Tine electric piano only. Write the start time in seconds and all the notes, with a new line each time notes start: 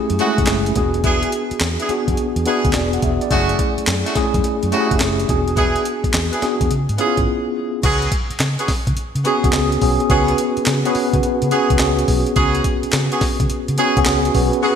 Already playing: A3 C#4 E4 G4 G#4
0.19 G#3 C#4 E4 G#4
0.26 A3
0.76 B3 D4 F#4 G#4
1.89 B3 D4 F#4 G#4
2.46 B3 D4 F#4 G#4
2.75 D5
2.94 F#5
3.03 E5
3.23 D5
3.31 A3 C#4 E4 G#4
4.16 A3 C#4 E4 G#4
4.72 A3 C#4 E4 G4
4.80 G#4
5.29 B3 D4 F#4 G#4
6.42 B3 D4 F#4 G#4
6.99 B3 C#4 E4 G#4
7.07 F4
9.25 B3 C#4 F#4 G#4
9.44 B3 C#4 F#4 G#4
9.82 B3 C#4 F#4 G#4
10.10 B3 C#4 F#4 B4
10.86 B3 C#4 F#4 B4
11.52 B3 C#4 F#4 G#4
11.80 B3 C#4 F#4 G#4
13.78 B3 C#4 F#4 G#4
13.97 B3 C#4 F#4 G#4
14.35 B3 C#4 F#4 B4
14.63 B3 C#4 F#4 G#4